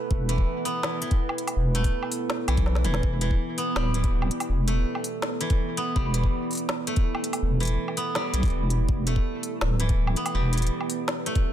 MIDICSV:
0, 0, Header, 1, 5, 480
1, 0, Start_track
1, 0, Key_signature, 1, "minor"
1, 0, Tempo, 365854
1, 138, Time_signature, 4, 2, 24, 8
1, 15126, End_track
2, 0, Start_track
2, 0, Title_t, "Ambient pad"
2, 0, Program_c, 0, 92
2, 0, Note_on_c, 0, 59, 88
2, 0, Note_on_c, 0, 64, 77
2, 0, Note_on_c, 0, 71, 90
2, 15126, Note_off_c, 0, 59, 0
2, 15126, Note_off_c, 0, 64, 0
2, 15126, Note_off_c, 0, 71, 0
2, 15126, End_track
3, 0, Start_track
3, 0, Title_t, "Koto"
3, 0, Program_c, 1, 107
3, 0, Note_on_c, 1, 52, 73
3, 0, Note_on_c, 1, 57, 105
3, 0, Note_on_c, 1, 59, 99
3, 363, Note_off_c, 1, 52, 0
3, 378, Note_on_c, 1, 52, 98
3, 849, Note_off_c, 1, 59, 0
3, 854, Note_on_c, 1, 59, 104
3, 1079, Note_off_c, 1, 52, 0
3, 1094, Note_on_c, 1, 52, 84
3, 1321, Note_off_c, 1, 52, 0
3, 1337, Note_on_c, 1, 52, 78
3, 2289, Note_off_c, 1, 57, 0
3, 2294, Note_on_c, 1, 57, 94
3, 3239, Note_off_c, 1, 52, 0
3, 3255, Note_on_c, 1, 52, 100
3, 3718, Note_off_c, 1, 52, 0
3, 3734, Note_on_c, 1, 52, 105
3, 4200, Note_off_c, 1, 52, 0
3, 4216, Note_on_c, 1, 52, 100
3, 4386, Note_off_c, 1, 59, 0
3, 4694, Note_on_c, 1, 59, 104
3, 4932, Note_on_c, 1, 55, 103
3, 5160, Note_off_c, 1, 52, 0
3, 5175, Note_on_c, 1, 52, 77
3, 6079, Note_off_c, 1, 57, 0
3, 6134, Note_on_c, 1, 57, 98
3, 7079, Note_off_c, 1, 52, 0
3, 7095, Note_on_c, 1, 52, 104
3, 7569, Note_off_c, 1, 59, 0
3, 7574, Note_on_c, 1, 59, 103
3, 7800, Note_off_c, 1, 55, 0
3, 7816, Note_on_c, 1, 55, 103
3, 8041, Note_off_c, 1, 52, 0
3, 8056, Note_on_c, 1, 52, 74
3, 9010, Note_off_c, 1, 57, 0
3, 9015, Note_on_c, 1, 57, 105
3, 9961, Note_off_c, 1, 52, 0
3, 9977, Note_on_c, 1, 52, 101
3, 10452, Note_off_c, 1, 59, 0
3, 10458, Note_on_c, 1, 59, 106
3, 10687, Note_off_c, 1, 55, 0
3, 10702, Note_on_c, 1, 55, 103
3, 10926, Note_off_c, 1, 52, 0
3, 10942, Note_on_c, 1, 52, 78
3, 11894, Note_off_c, 1, 57, 0
3, 11900, Note_on_c, 1, 57, 103
3, 12842, Note_off_c, 1, 52, 0
3, 12857, Note_on_c, 1, 52, 103
3, 13334, Note_off_c, 1, 59, 0
3, 13339, Note_on_c, 1, 59, 80
3, 13560, Note_off_c, 1, 55, 0
3, 13575, Note_on_c, 1, 55, 96
3, 13801, Note_off_c, 1, 52, 0
3, 13817, Note_on_c, 1, 52, 70
3, 14770, Note_off_c, 1, 57, 0
3, 14776, Note_on_c, 1, 57, 104
3, 15126, Note_off_c, 1, 52, 0
3, 15126, Note_off_c, 1, 55, 0
3, 15126, Note_off_c, 1, 57, 0
3, 15126, Note_off_c, 1, 59, 0
3, 15126, End_track
4, 0, Start_track
4, 0, Title_t, "Wobble bass"
4, 0, Program_c, 2, 39
4, 140, Note_on_c, 2, 28, 104
4, 604, Note_off_c, 2, 28, 0
4, 2053, Note_on_c, 2, 28, 96
4, 2520, Note_off_c, 2, 28, 0
4, 3254, Note_on_c, 2, 35, 92
4, 3736, Note_on_c, 2, 28, 83
4, 3756, Note_off_c, 2, 35, 0
4, 3958, Note_off_c, 2, 28, 0
4, 3978, Note_on_c, 2, 28, 99
4, 4443, Note_off_c, 2, 28, 0
4, 4934, Note_on_c, 2, 26, 104
4, 5640, Note_off_c, 2, 26, 0
4, 5896, Note_on_c, 2, 28, 100
4, 6361, Note_off_c, 2, 28, 0
4, 7819, Note_on_c, 2, 28, 102
4, 8283, Note_off_c, 2, 28, 0
4, 9740, Note_on_c, 2, 28, 107
4, 10204, Note_off_c, 2, 28, 0
4, 10937, Note_on_c, 2, 35, 93
4, 11158, Note_off_c, 2, 35, 0
4, 11180, Note_on_c, 2, 28, 82
4, 11644, Note_off_c, 2, 28, 0
4, 11658, Note_on_c, 2, 28, 105
4, 12122, Note_off_c, 2, 28, 0
4, 12617, Note_on_c, 2, 26, 104
4, 13322, Note_off_c, 2, 26, 0
4, 13574, Note_on_c, 2, 28, 96
4, 14040, Note_off_c, 2, 28, 0
4, 15126, End_track
5, 0, Start_track
5, 0, Title_t, "Drums"
5, 140, Note_on_c, 9, 36, 117
5, 271, Note_off_c, 9, 36, 0
5, 380, Note_on_c, 9, 42, 78
5, 500, Note_on_c, 9, 36, 58
5, 512, Note_off_c, 9, 42, 0
5, 632, Note_off_c, 9, 36, 0
5, 857, Note_on_c, 9, 46, 68
5, 988, Note_off_c, 9, 46, 0
5, 1094, Note_on_c, 9, 38, 116
5, 1225, Note_off_c, 9, 38, 0
5, 1334, Note_on_c, 9, 42, 73
5, 1456, Note_off_c, 9, 42, 0
5, 1456, Note_on_c, 9, 42, 35
5, 1460, Note_on_c, 9, 36, 103
5, 1587, Note_off_c, 9, 42, 0
5, 1591, Note_off_c, 9, 36, 0
5, 1695, Note_on_c, 9, 77, 55
5, 1814, Note_on_c, 9, 42, 67
5, 1827, Note_off_c, 9, 77, 0
5, 1935, Note_on_c, 9, 46, 70
5, 1935, Note_on_c, 9, 77, 56
5, 1945, Note_off_c, 9, 42, 0
5, 2067, Note_off_c, 9, 46, 0
5, 2067, Note_off_c, 9, 77, 0
5, 2293, Note_on_c, 9, 42, 86
5, 2417, Note_on_c, 9, 46, 41
5, 2420, Note_on_c, 9, 36, 62
5, 2425, Note_off_c, 9, 42, 0
5, 2549, Note_off_c, 9, 46, 0
5, 2551, Note_off_c, 9, 36, 0
5, 2658, Note_on_c, 9, 77, 37
5, 2776, Note_on_c, 9, 46, 69
5, 2789, Note_off_c, 9, 77, 0
5, 2907, Note_off_c, 9, 46, 0
5, 3012, Note_on_c, 9, 38, 114
5, 3144, Note_off_c, 9, 38, 0
5, 3253, Note_on_c, 9, 42, 75
5, 3253, Note_on_c, 9, 77, 63
5, 3377, Note_off_c, 9, 42, 0
5, 3377, Note_on_c, 9, 42, 37
5, 3380, Note_on_c, 9, 36, 109
5, 3384, Note_off_c, 9, 77, 0
5, 3492, Note_on_c, 9, 38, 64
5, 3508, Note_off_c, 9, 42, 0
5, 3511, Note_off_c, 9, 36, 0
5, 3613, Note_off_c, 9, 38, 0
5, 3613, Note_on_c, 9, 38, 62
5, 3733, Note_on_c, 9, 42, 70
5, 3733, Note_on_c, 9, 47, 87
5, 3744, Note_off_c, 9, 38, 0
5, 3855, Note_on_c, 9, 38, 85
5, 3864, Note_off_c, 9, 42, 0
5, 3864, Note_off_c, 9, 47, 0
5, 3979, Note_on_c, 9, 36, 112
5, 3986, Note_off_c, 9, 38, 0
5, 4110, Note_off_c, 9, 36, 0
5, 4214, Note_on_c, 9, 42, 87
5, 4339, Note_on_c, 9, 36, 63
5, 4345, Note_off_c, 9, 42, 0
5, 4471, Note_off_c, 9, 36, 0
5, 4694, Note_on_c, 9, 46, 67
5, 4825, Note_off_c, 9, 46, 0
5, 4934, Note_on_c, 9, 38, 123
5, 5065, Note_off_c, 9, 38, 0
5, 5173, Note_on_c, 9, 42, 78
5, 5297, Note_off_c, 9, 42, 0
5, 5297, Note_on_c, 9, 42, 38
5, 5299, Note_on_c, 9, 36, 108
5, 5429, Note_off_c, 9, 42, 0
5, 5430, Note_off_c, 9, 36, 0
5, 5537, Note_on_c, 9, 77, 52
5, 5654, Note_on_c, 9, 42, 70
5, 5669, Note_off_c, 9, 77, 0
5, 5777, Note_on_c, 9, 46, 68
5, 5777, Note_on_c, 9, 77, 56
5, 5786, Note_off_c, 9, 42, 0
5, 5908, Note_off_c, 9, 46, 0
5, 5908, Note_off_c, 9, 77, 0
5, 6136, Note_on_c, 9, 42, 84
5, 6267, Note_off_c, 9, 42, 0
5, 6496, Note_on_c, 9, 77, 38
5, 6615, Note_on_c, 9, 46, 63
5, 6628, Note_off_c, 9, 77, 0
5, 6746, Note_off_c, 9, 46, 0
5, 6853, Note_on_c, 9, 38, 127
5, 6985, Note_off_c, 9, 38, 0
5, 7093, Note_on_c, 9, 42, 80
5, 7216, Note_off_c, 9, 42, 0
5, 7216, Note_on_c, 9, 42, 38
5, 7219, Note_on_c, 9, 36, 116
5, 7347, Note_off_c, 9, 42, 0
5, 7350, Note_off_c, 9, 36, 0
5, 7575, Note_on_c, 9, 42, 71
5, 7706, Note_off_c, 9, 42, 0
5, 7819, Note_on_c, 9, 36, 122
5, 7950, Note_off_c, 9, 36, 0
5, 8055, Note_on_c, 9, 42, 85
5, 8181, Note_on_c, 9, 36, 65
5, 8187, Note_off_c, 9, 42, 0
5, 8312, Note_off_c, 9, 36, 0
5, 8537, Note_on_c, 9, 46, 30
5, 8565, Note_off_c, 9, 46, 0
5, 8565, Note_on_c, 9, 46, 39
5, 8595, Note_off_c, 9, 46, 0
5, 8595, Note_on_c, 9, 46, 44
5, 8625, Note_off_c, 9, 46, 0
5, 8625, Note_on_c, 9, 46, 52
5, 8756, Note_off_c, 9, 46, 0
5, 8775, Note_on_c, 9, 38, 127
5, 8906, Note_off_c, 9, 38, 0
5, 9015, Note_on_c, 9, 42, 79
5, 9135, Note_off_c, 9, 42, 0
5, 9135, Note_on_c, 9, 42, 36
5, 9141, Note_on_c, 9, 36, 122
5, 9267, Note_off_c, 9, 42, 0
5, 9272, Note_off_c, 9, 36, 0
5, 9376, Note_on_c, 9, 77, 51
5, 9496, Note_on_c, 9, 42, 70
5, 9507, Note_off_c, 9, 77, 0
5, 9618, Note_on_c, 9, 46, 63
5, 9618, Note_on_c, 9, 77, 51
5, 9627, Note_off_c, 9, 42, 0
5, 9750, Note_off_c, 9, 46, 0
5, 9750, Note_off_c, 9, 77, 0
5, 9977, Note_on_c, 9, 42, 37
5, 10007, Note_off_c, 9, 42, 0
5, 10007, Note_on_c, 9, 42, 48
5, 10039, Note_off_c, 9, 42, 0
5, 10039, Note_on_c, 9, 42, 55
5, 10068, Note_off_c, 9, 42, 0
5, 10068, Note_on_c, 9, 42, 65
5, 10200, Note_off_c, 9, 42, 0
5, 10340, Note_on_c, 9, 77, 34
5, 10457, Note_on_c, 9, 46, 68
5, 10471, Note_off_c, 9, 77, 0
5, 10588, Note_off_c, 9, 46, 0
5, 10695, Note_on_c, 9, 38, 126
5, 10826, Note_off_c, 9, 38, 0
5, 10937, Note_on_c, 9, 42, 79
5, 11060, Note_off_c, 9, 42, 0
5, 11060, Note_on_c, 9, 42, 33
5, 11061, Note_on_c, 9, 36, 109
5, 11092, Note_off_c, 9, 42, 0
5, 11092, Note_on_c, 9, 42, 29
5, 11122, Note_off_c, 9, 42, 0
5, 11122, Note_on_c, 9, 42, 23
5, 11153, Note_off_c, 9, 42, 0
5, 11153, Note_on_c, 9, 42, 19
5, 11192, Note_off_c, 9, 36, 0
5, 11284, Note_off_c, 9, 42, 0
5, 11419, Note_on_c, 9, 42, 65
5, 11550, Note_off_c, 9, 42, 0
5, 11658, Note_on_c, 9, 36, 122
5, 11789, Note_off_c, 9, 36, 0
5, 11897, Note_on_c, 9, 42, 81
5, 12019, Note_on_c, 9, 36, 66
5, 12028, Note_off_c, 9, 42, 0
5, 12151, Note_off_c, 9, 36, 0
5, 12375, Note_on_c, 9, 46, 70
5, 12506, Note_off_c, 9, 46, 0
5, 12613, Note_on_c, 9, 38, 127
5, 12744, Note_off_c, 9, 38, 0
5, 12853, Note_on_c, 9, 42, 78
5, 12978, Note_off_c, 9, 42, 0
5, 12978, Note_on_c, 9, 42, 36
5, 12979, Note_on_c, 9, 36, 110
5, 13109, Note_off_c, 9, 42, 0
5, 13110, Note_off_c, 9, 36, 0
5, 13217, Note_on_c, 9, 77, 50
5, 13335, Note_on_c, 9, 42, 62
5, 13348, Note_off_c, 9, 77, 0
5, 13457, Note_on_c, 9, 46, 63
5, 13457, Note_on_c, 9, 77, 51
5, 13466, Note_off_c, 9, 42, 0
5, 13588, Note_off_c, 9, 46, 0
5, 13588, Note_off_c, 9, 77, 0
5, 13813, Note_on_c, 9, 42, 73
5, 13875, Note_off_c, 9, 42, 0
5, 13875, Note_on_c, 9, 42, 61
5, 13935, Note_off_c, 9, 42, 0
5, 13935, Note_on_c, 9, 42, 50
5, 13993, Note_off_c, 9, 42, 0
5, 13993, Note_on_c, 9, 42, 43
5, 14125, Note_off_c, 9, 42, 0
5, 14177, Note_on_c, 9, 77, 35
5, 14296, Note_on_c, 9, 46, 70
5, 14308, Note_off_c, 9, 77, 0
5, 14427, Note_off_c, 9, 46, 0
5, 14535, Note_on_c, 9, 38, 124
5, 14666, Note_off_c, 9, 38, 0
5, 14777, Note_on_c, 9, 42, 74
5, 14897, Note_off_c, 9, 42, 0
5, 14897, Note_on_c, 9, 42, 35
5, 14899, Note_on_c, 9, 36, 102
5, 15028, Note_off_c, 9, 42, 0
5, 15030, Note_off_c, 9, 36, 0
5, 15126, End_track
0, 0, End_of_file